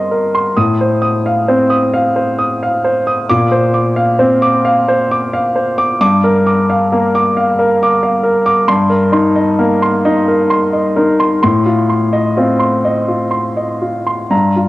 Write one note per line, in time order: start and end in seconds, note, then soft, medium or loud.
0.00 0.52 G2 soft
0.00 0.58 C4 soft
0.00 0.11 A#4 soft
0.00 0.58 D#5 soft
0.00 0.34 C6 soft
0.11 0.47 A#4 soft
0.34 0.57 C6 medium
0.57 3.26 A2 medium
0.57 0.93 D#6 medium
0.81 1.16 C5 soft
1.02 1.38 D#6 medium
1.26 1.61 F5 soft
1.48 2.21 C4 soft
1.48 1.84 C5 soft
1.70 2.06 D#6 medium
1.93 2.30 F5 medium
2.16 2.52 C5 soft
2.38 2.75 D#6 medium
2.63 2.98 F5 soft
2.84 3.21 C5 soft
3.07 3.30 D#6 medium
3.29 5.98 A#2 medium
3.29 3.66 D6 medium
3.52 3.88 C5 medium
3.74 4.10 D6 soft
3.96 4.33 F5 medium
4.19 4.92 C4 medium
4.19 4.56 C5 medium
4.42 4.79 D6 medium
4.65 5.01 F5 medium
4.88 5.24 C5 medium
5.11 5.47 D6 medium
5.33 5.70 F5 medium
5.56 5.92 C5 soft
5.78 5.99 D6 medium
6.01 8.64 G2 medium
6.01 6.37 D6 medium
6.24 6.60 A#4 medium
6.47 6.83 D6 medium
6.70 7.05 F5 medium
6.92 7.63 A#3 soft
6.92 7.27 A#4 medium
7.15 7.50 D6 medium
7.37 7.72 F5 medium
7.59 7.94 A#4 medium
7.83 8.17 D6 medium
8.03 8.38 F5 medium
8.24 8.59 A#4 medium
8.46 8.68 D6 medium
8.68 11.38 G2 medium
8.68 9.04 C6 medium
8.90 9.26 A#4 soft
9.12 9.85 D#4 medium
9.12 9.49 C6 soft
9.36 9.72 D#5 soft
9.59 10.32 A#3 medium
9.59 9.95 A#4 medium
9.82 10.18 C6 medium
10.05 10.78 D#4 medium
10.05 10.41 D#5 medium
10.28 10.64 A#4 soft
10.50 10.87 C6 medium
10.73 11.10 D#5 soft
10.96 11.43 D#4 soft
10.96 11.33 A#4 medium
11.20 11.41 C6 medium
11.43 14.28 A2 medium
11.43 11.80 C6 medium
11.66 12.04 F4 medium
11.89 12.27 C6 soft
12.13 12.51 D#5 soft
12.37 13.14 C4 soft
12.37 12.75 F4 soft
12.60 12.99 C6 soft
12.85 13.23 D#5 soft
13.08 13.47 F4 soft
13.31 13.71 C6 soft
13.57 13.96 D#5 soft
13.82 14.21 F4 soft
14.07 14.32 C6 soft
14.30 14.68 G2 soft
14.30 14.68 A#5 medium
14.56 14.68 F4 soft